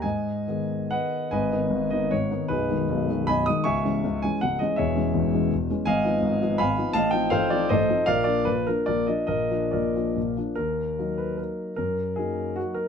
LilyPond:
<<
  \new Staff \with { instrumentName = "Grand piano" } { \time 3/4 \key gis \minor \tempo 4 = 155 <dis'' gis''>2 <b' dis'' fis''>4 | <b' dis'' gis''>4. dis''8 cis''4 | <dis' gis' b'>4. r8 <dis'' gis'' b''>8 dis'''8 | <e'' gis'' cis'''>4. gis''8 fis''8 dis''8 |
<gis' cis'' e''>4. r4. | \key ees \minor <ees'' f'' aes''>2 <f'' aes'' ces'''>4 | <ees'' f'' a''>8 g''8 <a' c'' f''>8 d''8 <a' c'' ees''>4 | <bes' d'' f''>8 d''8 ces''8 bes'8 <f' bes' d''>8 ees''8 |
<bes' ees''>4 <f' bes' d''>4. r8 | bes'4. ces''8 bes'4 | bes'4 aes'4 ges'8 bes'8 | }
  \new Staff \with { instrumentName = "Grand piano" } { \clef bass \time 3/4 \key gis \minor gis,4 <dis b gis'>2 | <gis,, gis,>8 <dis b dis'>8 <gis,, gis,>8 <dis b dis'>8 <gis,, gis,>8 <dis b dis'>8 | <b,,, b,,>8 <dis gis dis'>8 <b,,, b,,>8 <dis gis dis'>8 <b,,, b,,>8 <dis gis dis'>8 | <cis,, cis,>8 <e gis cis'>8 <cis,, cis,>8 <e gis cis'>8 <cis,, cis,>8 <e gis cis'>8 |
<e,, e,>8 <e gis cis'>8 <e,, e,>8 <e gis cis'>8 <e,, e,>8 <e gis cis'>8 | \key ees \minor <aes,, aes,>8 <f ces' ees'>8 <aes,, aes,>8 <f ces' ees'>8 <aes,, aes,>8 <f ces' ees'>8 | <a,, a,>8 <f c' ees'>8 <a,, a,>8 <f c' ees'>8 <a,, a,>8 <f c' ees'>8 | <bes,, bes,>8 <f bes d'>8 <bes,, bes,>8 <f bes d'>8 <bes,, bes,>8 <f bes d'>8 |
<bes,, bes,>8 <f bes d'>8 <bes,, bes,>8 <f bes d'>8 <bes,, bes,>8 <f bes d'>8 | ees,4 <ges bes ees'>2 | ges,4 <ges bes ees'>2 | }
>>